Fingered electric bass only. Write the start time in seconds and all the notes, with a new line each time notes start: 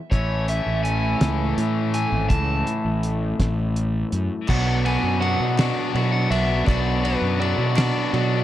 0.12 A1
0.66 A1
1.21 C#2
1.58 A2
2.12 G#1
2.30 C#2
2.85 A1
3.40 A1
4.12 F#2
4.49 B1
5.03 F#2
5.40 B2
5.95 B2
6.30 B1
6.68 B1
7.21 F#2
7.58 B2
8.13 B2